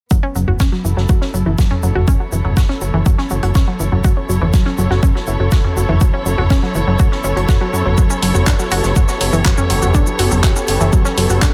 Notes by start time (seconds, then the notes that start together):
0.11 F#1 F#3 B3, kick, shaker
0.23 C#4
0.35 F#1 F#3, shaker
0.48 F#1 F#4, mid tom
0.60 F#1 C#4, kick, snare, shaker
0.67 E4
0.72 F#3, snare
0.85 F#1 E3 A4, shaker
0.97 F#1 F#3, snare
1.09 F#1 F#4, kick, shaker
1.21 C#4, snare
1.34 F#1 F#3, shaker
1.46 F#1 E3
1.58 F#1 F#3, kick, snare, shaker
1.71 C#4, mid tom
1.83 F#1 F#3 C#5, shaker
1.95 F#1 F#4, mid tom
2.08 F#1 C#4, kick, shaker
2.20 F#3
2.32 F#1 E3, shaker
2.45 F#1 F#3, mid tom
2.57 F#1 F#4, kick, snare, shaker
2.69 C#4, snare
2.81 F#1 F#3, shaker
2.94 F#1 E3
3.06 F#1 F#3, kick, shaker
3.18 C#4, snare
3.30 F#1 F#3, shaker
3.43 F#1 F#4, closed hi-hat
3.55 F#1 C#4, kick, snare, shaker
3.68 F#3
3.80 F#1 E3, shaker
3.92 F#1 F#3, mid tom
4.04 F#1 F#4, kick, shaker
4.17 C#4
4.29 F#1 F#3, shaker
4.41 F#1 E3, mid tom
4.53 F#1 F#3, kick, snare, shaker
4.66 C#4, snare
4.78 F#1 F#3, shaker
4.90 F#1 F#4, snare
5.03 F#1 C#4, kick, shaker
5.15 F#3, snare
5.27 F#1 E3, shaker
5.40 F#1 F#3
5.51 F#1 F#4, kick, snare, shaker
5.64 C#4, mid tom
5.76 F#1 F#3, shaker
5.89 F#1 E3, mid tom
6.01 F#1 F#3, kick, shaker
6.14 C#4
6.26 F#1 F#3, shaker
6.38 F#1 F#4, mid tom
6.50 F#1 C#4, kick, snare, shaker
6.63 F#3, snare
6.75 F#1 E3, shaker
6.87 F#1 F#3
6.99 F#1 F#4, kick, shaker
7.12 C#4, snare
7.24 F#1 C#4, shaker
7.36 F#1 F#3, closed hi-hat
7.48 F#1 F#4, kick, snare, shaker
7.61 F#3
7.73 F#2 F#3, shaker
7.86 F#1 F#3, mid tom
7.98 F#1 F#3 B3 G4 A4, kick, shaker
8.10 C#4, shaker
8.22 F#1 F#3, open hi-hat, shaker
8.35 F#1 F#4, mid tom, shaker
8.47 F#1 D4, kick, snare, clap, shaker
8.59 F#3, snare, shaker
8.71 F#1 F#4, open hi-hat, shaker
8.84 F#1 F#3, snare, shaker
8.96 F#1 F#4, kick, shaker
9.08 C#4, snare, shaker
9.21 F#1 F#3, open hi-hat, shaker
9.33 F#1 E3, shaker
9.45 F#1 F#3, kick, snare, clap, shaker
9.58 C#4, mid tom, shaker
9.70 F#1 F#3, open hi-hat, shaker
9.82 F#1 F#4, mid tom, shaker
9.94 F#1 D4, kick, shaker
10.07 F#3, shaker
10.19 F#1 F#4, open hi-hat, shaker
10.31 F#1 F#3, mid tom, shaker
10.43 F#1 F#4, kick, snare, clap, shaker
10.56 C#4, snare, shaker
10.67 F#1 F#3, open hi-hat, shaker
10.81 F#1 E3, shaker
10.93 F#1 F#3, kick, shaker
11.05 C#4, snare, shaker
11.17 F#1 F#3, open hi-hat, shaker
11.30 F#1 F#4, closed hi-hat, shaker
11.42 F#1 D4, kick, snare, clap, shaker